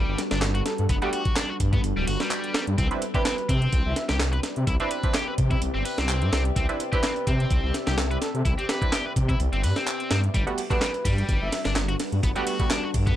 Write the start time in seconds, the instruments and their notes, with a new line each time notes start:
Already playing: distorted electric guitar G3, ambient pad G3 D4 F#4 A4 B4
0.08 detuned saw bass G1
0.18 snare, closed hi-hat
0.31 detuned saw bass G1, distorted electric guitar D4, snare, closed hi-hat
0.42 snare, clap, closed hi-hat
0.55 distorted electric guitar F#4, closed hi-hat
0.66 soft synth lead A4, snare, closed hi-hat
0.78 detuned saw bass G2, soft synth lead A4, closed hi-hat
0.89 detuned saw bass G1, distorted electric guitar B3, kick, closed hi-hat
1.02 synth stab G3 A3 B3 F#4, distorted electric guitar G3, soft synth lead G4, closed hi-hat
1.13 distorted electric guitar F#4, soft synth lead G4, closed hi-hat
1.25 kick, closed hi-hat
1.36 distorted electric guitar D4, snare, clap, closed hi-hat
1.50 distorted electric guitar F#4
1.60 detuned saw bass G2, kick, closed hi-hat
1.73 distorted electric guitar B3, kick, closed hi-hat
1.84 detuned saw bass G1, closed hi-hat
1.97 detuned saw bass D1, distorted electric guitar G3
2.07 detuned saw bass G1, distorted electric guitar F#4, closed hi-hat, open hi-hat
2.20 distorted electric guitar G3, snare, closed hi-hat
2.31 clap, closed hi-hat
2.44 closed hi-hat
2.54 distorted electric guitar G3, snare, closed hi-hat
2.67 detuned saw bass G2, closed hi-hat
2.78 detuned saw bass C2, ambient pad C4 G4 D5 E5, distorted electric guitar C4, kick, closed hi-hat
2.91 synth stab C4 D4 E4 B4, closed hi-hat
3.02 closed hi-hat
3.14 synth stab C4 D4 E4 B4, distorted electric guitar G4, soft synth lead B4, kick, closed hi-hat
3.25 distorted electric guitar C4, snare, clap, closed hi-hat
3.38 closed hi-hat
3.49 detuned saw bass C3, distorted electric guitar C4, kick, closed hi-hat
3.62 closed hi-hat
3.73 detuned saw bass C2, kick, closed hi-hat
3.85 detuned saw bass C2, soft synth lead E5
3.96 soft synth lead E5, snare, closed hi-hat
4.09 detuned saw bass C2, distorted electric guitar G4, snare, closed hi-hat
4.20 snare, clap, closed hi-hat
4.33 distorted electric guitar B4, closed hi-hat
4.43 snare, closed hi-hat
4.56 detuned saw bass C3, closed hi-hat
4.67 detuned saw bass C2, distorted electric guitar E4, kick, closed hi-hat
4.80 synth stab C4 D4 E4 B4, distorted electric guitar C4, closed hi-hat
4.91 distorted electric guitar B4, closed hi-hat
5.03 synth stab C4 D4 E4 B4, kick, closed hi-hat
5.14 distorted electric guitar G4, snare, clap, closed hi-hat
5.27 distorted electric guitar B4
5.38 detuned saw bass C3, kick, closed hi-hat
5.51 distorted electric guitar E4, kick, closed hi-hat
5.62 detuned saw bass C2, closed hi-hat
5.74 detuned saw bass G1, distorted electric guitar C4
5.85 distorted electric guitar B4, closed hi-hat, open hi-hat
5.98 detuned saw bass C2, distorted electric guitar C4, snare, closed hi-hat
6.09 clap, closed hi-hat
6.22 detuned saw bass G2, closed hi-hat
6.33 detuned saw bass C2, distorted electric guitar C4, snare, closed hi-hat
6.45 closed hi-hat
6.56 detuned saw bass C2, distorted electric guitar C4, kick, closed hi-hat
6.69 synth stab C4 D4 E4 B4, closed hi-hat
6.80 closed hi-hat
6.92 synth stab C4 D4 E4 B4, distorted electric guitar G4, soft synth lead B4, kick, closed hi-hat
7.03 distorted electric guitar C4, snare, clap, closed hi-hat
7.16 closed hi-hat
7.27 detuned saw bass C3, distorted electric guitar C4, kick, closed hi-hat
7.40 closed hi-hat
7.50 detuned saw bass C2, kick, closed hi-hat
7.64 detuned saw bass C2
7.74 snare, closed hi-hat
7.87 detuned saw bass C2, distorted electric guitar G4, snare, closed hi-hat
7.98 snare, clap, closed hi-hat
8.11 distorted electric guitar B4, closed hi-hat
8.21 soft synth lead A4, snare, closed hi-hat
8.34 detuned saw bass C3, soft synth lead A4, closed hi-hat
8.45 detuned saw bass C2, distorted electric guitar E4, kick, closed hi-hat
8.58 distorted electric guitar C4, soft synth lead G4, closed hi-hat
8.69 soft synth lead G4, distorted electric guitar B4, snare, closed hi-hat
8.82 synth stab C4 D4 E4 B4, kick, closed hi-hat
8.92 distorted electric guitar G4, snare, clap, closed hi-hat
9.05 distorted electric guitar B4
9.16 detuned saw bass C3, kick, closed hi-hat
9.29 distorted electric guitar E4, kick, closed hi-hat
9.40 detuned saw bass C2, closed hi-hat
9.53 detuned saw bass G1, distorted electric guitar C4, closed hi-hat
9.63 detuned saw bass G2, distorted electric guitar B4, closed hi-hat, open hi-hat
9.76 distorted electric guitar C4, snare, closed hi-hat
9.87 clap, closed hi-hat
10.00 closed hi-hat
10.11 detuned saw bass G2, distorted electric guitar C4, snare, closed hi-hat
10.24 closed hi-hat
10.34 detuned saw bass G1, ambient pad G3 D4 F#4 A4 B4, distorted electric guitar G3, kick, closed hi-hat
10.47 synth stab G3 A3 B3 F#4, closed hi-hat
10.58 closed hi-hat, ride
10.70 synth stab G3 A3 B3 F#4, distorted electric guitar D4, soft synth lead B4, kick, closed hi-hat
10.81 distorted electric guitar G3, snare, clap, closed hi-hat
10.94 closed hi-hat
11.05 detuned saw bass G2, distorted electric guitar G3, kick, closed hi-hat, ride
11.18 closed hi-hat
11.29 detuned saw bass G1, kick, closed hi-hat
11.41 detuned saw bass G1, soft synth lead E5
11.52 soft synth lead E5, snare, closed hi-hat, ride
11.65 detuned saw bass G1, distorted electric guitar D4, snare, closed hi-hat
11.76 snare, clap, closed hi-hat
11.89 distorted electric guitar F#4, closed hi-hat
12.00 snare, closed hi-hat, ride
12.12 detuned saw bass G2, closed hi-hat
12.23 detuned saw bass G1, distorted electric guitar B3, kick, closed hi-hat
12.36 synth stab G3 A3 B3 F#4, distorted electric guitar G3, closed hi-hat
12.47 distorted electric guitar F#4, closed hi-hat, ride
12.60 synth stab G3 A3 B3 F#4, kick, closed hi-hat
12.71 distorted electric guitar D4, snare, clap, closed hi-hat
12.83 distorted electric guitar F#4
12.94 detuned saw bass G2, kick, closed hi-hat, ride
13.07 distorted electric guitar B3, kick, closed hi-hat